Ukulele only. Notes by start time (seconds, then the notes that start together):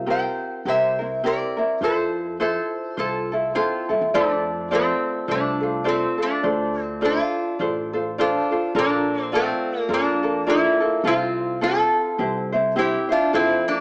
0.06 C4 F4 G4 A#4
0.66 C4 E4 G4 A#4
0.99 C4 E4 A#4
1.24 C4 E4 G4 A#4
1.57 C4 E4 A#4
1.82 E4 F4 A4 C5
2.40 E4 F4 A4 C5
2.97 E4 F4 A4 C5
3.32 E4 F4 A4
3.55 E4 F4 A4 C5
3.89 E4 F4 A4
4.14 F4 A4 C5 D5
4.71 F4 A4 C5 D5
5.28 F4 A4 C5 D5
5.61 F4 A4 C5
5.84 F4 A4 C5 D5
6.18 F4 A4 C5
6.43 F4 A4 C5 D5
7.01 F4 A4 C5 D5
7.59 F4 A4 C5 D5
7.93 F4 A4 C5
8.18 F4 A4 C5 D5
8.51 F4 A4 C5
8.74 F4 A4 A#4 D5
9.32 F4 A4 D5
9.89 F4 A4 A#4 D5
10.23 F4 A4 A#4
10.47 F4 A4 A#4 D5
10.81 F4 A4 A#4
11.05 C4 F4 A4 C5
11.61 C4 F4 A4 C5
12.18 C4 E4 G4 C5
12.52 C4 E4 C5
12.76 C4 E4 G4 C5
13.09 C4 E4 C5
13.33 E4 F4 A4 C5